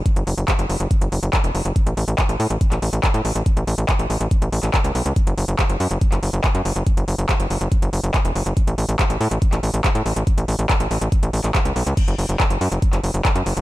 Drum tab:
CC |----------------|----------------|----------------|----------------|
HH |xxoxxxoxxxoxxxox|xxoxxxoxxxoxxxox|xxoxxxoxxxoxxxox|xxoxxxoxxxoxxxox|
CP |----x-------x---|----x----x--x---|----x------xx---|----x----x--x---|
BD |o---o---o---o---|o---o---o---o---|o---o---o---o---|o---o---o---o---|

CC |----------------|----------------|----------------|x---------------|
HH |xxoxxxoxxxoxxxox|xxoxxxoxxxoxxxox|xxoxxxoxxxoxxxox|xxoxxxoxxxoxxxox|
CP |----x-------x---|----x----x--x---|----x------xx---|----x----x--x---|
BD |o---o---o---o---|o---o---o---o---|o---o---o---o---|o---o---o---o---|